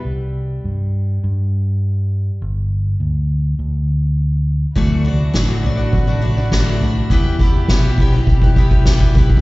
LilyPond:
<<
  \new Staff \with { instrumentName = "Steel-string acoustic guitar" } { \time 4/4 \key c \lydian \tempo 4 = 102 r1 | r1 | <d e a d' fis' d''>8 <a d' fis' d''>8 <d e a d' fis' d''>8 <a d' fis' d''>16 <a d' fis' d''>8 <a d' fis' d''>16 <a d' fis' d''>16 <a d' fis' d''>16 <d e a d' fis' d''>8 <a d' fis' d''>8 | <e b e' g' b'>8 <b e' g' b'>8 <e b e' g' b'>8 <b e' g' b'>16 <e' g' b'>8 <e' g' b'>16 <b e' g' b'>16 <e' g' b'>16 <e b e' g' b'>8 <b e' g' b'>8 | }
  \new Staff \with { instrumentName = "Steel-string acoustic guitar" } { \clef bass \time 4/4 \key c \lydian g1 | r1 | r1 | r1 | }
  \new Staff \with { instrumentName = "String section" } { \clef bass \time 4/4 \key c \lydian << { r1 | r1 | <d fis a fis'>1 | <b, e g g'>1 | } \\ { r1 | r1 | e'1~ | e'1 | } >> }
  \new Staff \with { instrumentName = "Fingered electric bass" } { \clef bass \time 4/4 \key c \lydian c,4 g,4 g,2 | g,,4 d,4 d,2 | d,4 a,,4 a,,2 | e,4 b,,4 b,,2 | }
  \new DrumStaff \with { instrumentName = "Drums" } \drummode { \time 4/4 r4 r4 r4 r4 | r4 r4 r4 r4 | <bd tomfh>4 <bd sn>8 tomfh8 <bd tomfh>4 <bd sn>8 tomfh8 | <bd tomfh>8 bd8 <bd sn>8 <bd tomfh>8 <bd tomfh>16 bd16 bd16 bd16 <bd sn>16 bd16 <bd tomfh>16 bd32 bd32 | }
>>